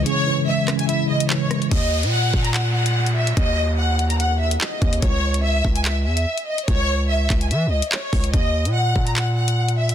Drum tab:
HH |x-----xxx--x--xx|x--x---xx--x-x-x|x-----xxx--x--xx|x--x---xx--x-x-x|
CP |------x-----x---|--------x-------|------------x---|--------x-------|
SD |------r-------r-|----------------|----------------|----------------|
BD |----------------|o-----o---------|o-------------o-|o-----o---------|

HH |x-----xxx--x--ox|x--x---xx--x-x-x|
CP |------x-----x---|--------x-------|
SD |----------------|----------------|
BD |o-----o-------o-|o-----o---------|